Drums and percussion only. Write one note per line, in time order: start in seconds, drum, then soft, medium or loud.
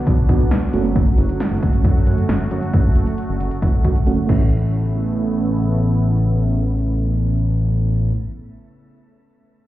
0.07 kick medium
0.07 closed hi-hat medium
0.29 kick medium
0.29 closed hi-hat medium
0.40 closed hi-hat soft
0.51 snare loud
0.51 closed hi-hat medium
0.73 closed hi-hat medium
0.85 closed hi-hat soft
0.96 kick loud
0.96 closed hi-hat medium
1.18 closed hi-hat medium
1.29 closed hi-hat medium
1.40 snare loud
1.40 closed hi-hat medium
1.63 kick medium
1.63 closed hi-hat medium
1.73 closed hi-hat medium
1.84 kick medium
1.84 closed hi-hat medium
2.07 closed hi-hat medium
2.18 closed hi-hat soft
2.29 snare loud
2.29 closed hi-hat medium
2.51 closed hi-hat medium
2.62 closed hi-hat soft
2.73 kick loud
2.73 closed hi-hat medium
2.95 closed hi-hat medium
3.07 closed hi-hat soft
3.18 closed hi-hat medium
3.40 closed hi-hat medium
3.51 closed hi-hat medium
3.62 kick medium
3.62 closed hi-hat medium
3.85 kick medium
3.85 closed hi-hat medium
3.96 closed hi-hat soft
4.07 closed hi-hat medium
4.29 kick loud
4.29 crash medium